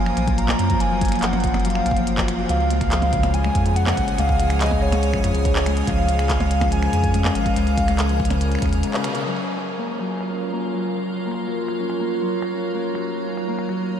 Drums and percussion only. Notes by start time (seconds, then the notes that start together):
0.06 finger snap
0.17 closed hi-hat
0.28 kick, closed hi-hat
0.38 closed hi-hat
0.49 clap, percussion blips
0.59 closed hi-hat
0.70 kick, closed hi-hat
0.80 closed hi-hat
1.01 kick, closed hi-hat
1.05 closed hi-hat
1.08 finger snap, closed hi-hat
1.12 closed hi-hat
1.16 closed hi-hat
1.19 clap, closed hi-hat
1.23 closed hi-hat
1.33 closed hi-hat, percussion blips
1.40 closed hi-hat
1.44 kick, closed hi-hat
1.47 closed hi-hat
1.54 finger snap, closed hi-hat, percussion blips
1.60 closed hi-hat
1.65 closed hi-hat
1.70 closed hi-hat
1.75 finger snap
1.86 finger snap, closed hi-hat
1.91 kick
1.97 closed hi-hat
2.07 closed hi-hat
2.18 kick, clap
2.28 finger snap, closed hi-hat
2.49 closed hi-hat
2.71 closed hi-hat
2.81 finger snap, kick, closed hi-hat
2.92 clap, closed hi-hat
3.02 closed hi-hat, percussion blips
3.13 kick, closed hi-hat
3.23 finger snap, closed hi-hat, percussion blips
3.34 closed hi-hat
3.44 finger snap
3.55 kick, closed hi-hat
3.66 closed hi-hat
3.76 closed hi-hat
3.87 clap, percussion blips
3.97 kick, closed hi-hat
4.08 closed hi-hat
4.18 closed hi-hat
4.29 kick
4.40 closed hi-hat
4.50 finger snap, closed hi-hat
4.61 clap, closed hi-hat
4.66 closed hi-hat
4.71 kick, percussion blips
4.92 finger snap, closed hi-hat, percussion blips
5.03 closed hi-hat
5.14 finger snap, kick
5.24 finger snap, closed hi-hat
5.35 closed hi-hat
5.45 kick, closed hi-hat
5.56 clap
5.66 finger snap, closed hi-hat
5.77 closed hi-hat
5.87 kick, closed hi-hat
6.09 closed hi-hat
6.19 finger snap, closed hi-hat
6.30 kick, clap, closed hi-hat
6.40 closed hi-hat, percussion blips
6.51 closed hi-hat
6.61 finger snap, kick, closed hi-hat, percussion blips
6.72 closed hi-hat
6.83 finger snap
6.93 closed hi-hat
7.04 kick, closed hi-hat
7.14 closed hi-hat
7.25 clap, percussion blips
7.35 closed hi-hat
7.46 kick, closed hi-hat
7.56 closed hi-hat
7.67 closed hi-hat
7.78 kick, closed hi-hat
7.88 finger snap, closed hi-hat
7.99 clap, closed hi-hat
8.09 closed hi-hat
8.20 kick
8.25 closed hi-hat
8.30 finger snap, closed hi-hat, percussion blips
8.41 closed hi-hat
8.52 finger snap, closed hi-hat
8.59 finger snap, kick
8.62 finger snap, closed hi-hat
8.66 finger snap
8.69 finger snap, closed hi-hat
8.83 closed hi-hat
8.94 clap
9.04 finger snap, closed hi-hat
9.15 closed hi-hat
9.57 finger snap
9.99 finger snap
10.21 finger snap
10.31 finger snap
11.26 finger snap
11.29 finger snap
11.32 finger snap
11.34 finger snap
11.68 finger snap
11.90 finger snap
12.00 finger snap
12.42 finger snap
12.95 finger snap
13.37 finger snap
13.59 finger snap
13.69 finger snap